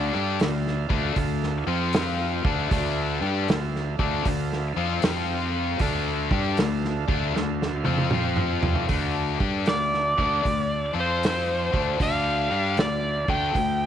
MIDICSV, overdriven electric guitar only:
0, 0, Header, 1, 2, 480
1, 0, Start_track
1, 0, Key_signature, -1, "minor"
1, 0, Tempo, 773196
1, 1687, Time_signature, 4, 2, 24, 8
1, 8605, End_track
2, 0, Start_track
2, 0, Title_t, "Overdriven electric guitar"
2, 0, Program_c, 0, 29
2, 0, Note_on_c, 0, 50, 105
2, 0, Note_on_c, 0, 57, 107
2, 0, Note_on_c, 0, 62, 108
2, 72, Note_off_c, 0, 50, 0
2, 76, Note_off_c, 0, 57, 0
2, 76, Note_off_c, 0, 62, 0
2, 81, Note_on_c, 0, 55, 89
2, 84, Note_on_c, 0, 62, 90
2, 89, Note_on_c, 0, 67, 101
2, 242, Note_off_c, 0, 55, 0
2, 244, Note_off_c, 0, 62, 0
2, 246, Note_off_c, 0, 67, 0
2, 247, Note_on_c, 0, 50, 65
2, 251, Note_on_c, 0, 57, 72
2, 500, Note_off_c, 0, 50, 0
2, 502, Note_off_c, 0, 57, 0
2, 554, Note_on_c, 0, 50, 102
2, 555, Note_on_c, 0, 57, 109
2, 560, Note_on_c, 0, 62, 106
2, 714, Note_off_c, 0, 50, 0
2, 715, Note_off_c, 0, 57, 0
2, 721, Note_off_c, 0, 62, 0
2, 722, Note_on_c, 0, 50, 56
2, 722, Note_on_c, 0, 57, 68
2, 977, Note_off_c, 0, 50, 0
2, 977, Note_off_c, 0, 57, 0
2, 1037, Note_on_c, 0, 60, 105
2, 1038, Note_on_c, 0, 53, 98
2, 1040, Note_on_c, 0, 65, 101
2, 1510, Note_off_c, 0, 60, 0
2, 1511, Note_off_c, 0, 53, 0
2, 1512, Note_off_c, 0, 65, 0
2, 1517, Note_on_c, 0, 50, 81
2, 1519, Note_on_c, 0, 57, 102
2, 1523, Note_on_c, 0, 62, 98
2, 1676, Note_off_c, 0, 50, 0
2, 1680, Note_off_c, 0, 57, 0
2, 1682, Note_off_c, 0, 62, 0
2, 1683, Note_on_c, 0, 50, 99
2, 1686, Note_on_c, 0, 57, 90
2, 1690, Note_on_c, 0, 62, 110
2, 1990, Note_off_c, 0, 62, 0
2, 1991, Note_off_c, 0, 50, 0
2, 1993, Note_off_c, 0, 57, 0
2, 1996, Note_on_c, 0, 55, 95
2, 1998, Note_on_c, 0, 62, 87
2, 2001, Note_on_c, 0, 67, 97
2, 2159, Note_off_c, 0, 55, 0
2, 2159, Note_off_c, 0, 62, 0
2, 2161, Note_off_c, 0, 67, 0
2, 2167, Note_on_c, 0, 50, 66
2, 2168, Note_on_c, 0, 57, 79
2, 2419, Note_off_c, 0, 50, 0
2, 2420, Note_off_c, 0, 57, 0
2, 2476, Note_on_c, 0, 50, 94
2, 2480, Note_on_c, 0, 62, 119
2, 2481, Note_on_c, 0, 57, 104
2, 2639, Note_off_c, 0, 50, 0
2, 2641, Note_off_c, 0, 57, 0
2, 2641, Note_off_c, 0, 62, 0
2, 2648, Note_on_c, 0, 50, 59
2, 2651, Note_on_c, 0, 57, 64
2, 2900, Note_off_c, 0, 50, 0
2, 2901, Note_off_c, 0, 57, 0
2, 2958, Note_on_c, 0, 53, 100
2, 2963, Note_on_c, 0, 60, 96
2, 2965, Note_on_c, 0, 65, 112
2, 3120, Note_off_c, 0, 53, 0
2, 3122, Note_off_c, 0, 60, 0
2, 3123, Note_off_c, 0, 65, 0
2, 3127, Note_on_c, 0, 53, 79
2, 3131, Note_on_c, 0, 65, 93
2, 3133, Note_on_c, 0, 60, 83
2, 3601, Note_off_c, 0, 53, 0
2, 3604, Note_off_c, 0, 60, 0
2, 3604, Note_off_c, 0, 65, 0
2, 3604, Note_on_c, 0, 50, 99
2, 3606, Note_on_c, 0, 57, 96
2, 3609, Note_on_c, 0, 62, 102
2, 3911, Note_off_c, 0, 50, 0
2, 3913, Note_off_c, 0, 57, 0
2, 3914, Note_off_c, 0, 62, 0
2, 3921, Note_on_c, 0, 55, 88
2, 3924, Note_on_c, 0, 62, 95
2, 3925, Note_on_c, 0, 67, 101
2, 4078, Note_off_c, 0, 55, 0
2, 4080, Note_on_c, 0, 50, 56
2, 4081, Note_on_c, 0, 57, 67
2, 4083, Note_off_c, 0, 62, 0
2, 4083, Note_off_c, 0, 67, 0
2, 4336, Note_off_c, 0, 50, 0
2, 4336, Note_off_c, 0, 57, 0
2, 4394, Note_on_c, 0, 50, 103
2, 4399, Note_on_c, 0, 57, 105
2, 4403, Note_on_c, 0, 62, 117
2, 4552, Note_off_c, 0, 50, 0
2, 4553, Note_off_c, 0, 57, 0
2, 4559, Note_on_c, 0, 50, 59
2, 4560, Note_on_c, 0, 57, 64
2, 4562, Note_off_c, 0, 62, 0
2, 4815, Note_off_c, 0, 50, 0
2, 4816, Note_off_c, 0, 57, 0
2, 4874, Note_on_c, 0, 53, 85
2, 4875, Note_on_c, 0, 60, 99
2, 4877, Note_on_c, 0, 65, 90
2, 5025, Note_off_c, 0, 53, 0
2, 5031, Note_off_c, 0, 60, 0
2, 5032, Note_on_c, 0, 53, 78
2, 5033, Note_off_c, 0, 65, 0
2, 5038, Note_on_c, 0, 60, 85
2, 5040, Note_on_c, 0, 65, 87
2, 5513, Note_off_c, 0, 53, 0
2, 5513, Note_off_c, 0, 60, 0
2, 5516, Note_on_c, 0, 50, 85
2, 5516, Note_on_c, 0, 57, 90
2, 5518, Note_off_c, 0, 65, 0
2, 5521, Note_on_c, 0, 62, 96
2, 5827, Note_off_c, 0, 62, 0
2, 5828, Note_off_c, 0, 50, 0
2, 5828, Note_off_c, 0, 57, 0
2, 5834, Note_on_c, 0, 55, 80
2, 5835, Note_on_c, 0, 62, 88
2, 5839, Note_on_c, 0, 67, 91
2, 5998, Note_off_c, 0, 55, 0
2, 5999, Note_off_c, 0, 62, 0
2, 6001, Note_off_c, 0, 67, 0
2, 6006, Note_on_c, 0, 50, 64
2, 6006, Note_on_c, 0, 57, 73
2, 6260, Note_off_c, 0, 50, 0
2, 6260, Note_off_c, 0, 57, 0
2, 6317, Note_on_c, 0, 50, 88
2, 6319, Note_on_c, 0, 57, 101
2, 6323, Note_on_c, 0, 62, 106
2, 6470, Note_off_c, 0, 50, 0
2, 6474, Note_off_c, 0, 57, 0
2, 6477, Note_on_c, 0, 50, 61
2, 6481, Note_on_c, 0, 57, 58
2, 6484, Note_off_c, 0, 62, 0
2, 6736, Note_off_c, 0, 50, 0
2, 6738, Note_off_c, 0, 57, 0
2, 6787, Note_on_c, 0, 53, 87
2, 6792, Note_on_c, 0, 60, 90
2, 6793, Note_on_c, 0, 65, 99
2, 7268, Note_off_c, 0, 53, 0
2, 7270, Note_off_c, 0, 60, 0
2, 7270, Note_off_c, 0, 65, 0
2, 7276, Note_on_c, 0, 50, 81
2, 7277, Note_on_c, 0, 57, 89
2, 7280, Note_on_c, 0, 62, 96
2, 7435, Note_off_c, 0, 50, 0
2, 7441, Note_off_c, 0, 57, 0
2, 7442, Note_on_c, 0, 50, 94
2, 7443, Note_off_c, 0, 62, 0
2, 7451, Note_on_c, 0, 57, 83
2, 7452, Note_on_c, 0, 62, 100
2, 7753, Note_off_c, 0, 50, 0
2, 7754, Note_off_c, 0, 57, 0
2, 7755, Note_off_c, 0, 62, 0
2, 7757, Note_on_c, 0, 55, 88
2, 7763, Note_on_c, 0, 62, 90
2, 7765, Note_on_c, 0, 67, 102
2, 7922, Note_off_c, 0, 55, 0
2, 7925, Note_off_c, 0, 62, 0
2, 7926, Note_off_c, 0, 67, 0
2, 7934, Note_on_c, 0, 50, 61
2, 7936, Note_on_c, 0, 57, 76
2, 8186, Note_off_c, 0, 50, 0
2, 8187, Note_off_c, 0, 57, 0
2, 8248, Note_on_c, 0, 50, 84
2, 8252, Note_on_c, 0, 57, 108
2, 8257, Note_on_c, 0, 62, 105
2, 8407, Note_off_c, 0, 57, 0
2, 8408, Note_off_c, 0, 50, 0
2, 8412, Note_off_c, 0, 62, 0
2, 8414, Note_on_c, 0, 50, 60
2, 8414, Note_on_c, 0, 57, 67
2, 8605, Note_off_c, 0, 50, 0
2, 8605, Note_off_c, 0, 57, 0
2, 8605, End_track
0, 0, End_of_file